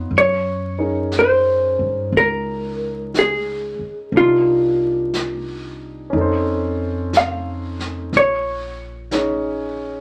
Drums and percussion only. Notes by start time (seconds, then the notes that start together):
0.12 brush sweep
1.12 brush sweep, snare, hi-hat pedal
2.14 brush sweep
3.14 brush sweep, snare, hi-hat pedal
4.13 brush sweep
5.14 brush sweep, snare, hi-hat pedal
6.13 brush sweep
7.13 brush sweep, snare, hi-hat pedal
7.79 snare
8.13 brush sweep, snare
9.11 brush sweep, snare, hi-hat pedal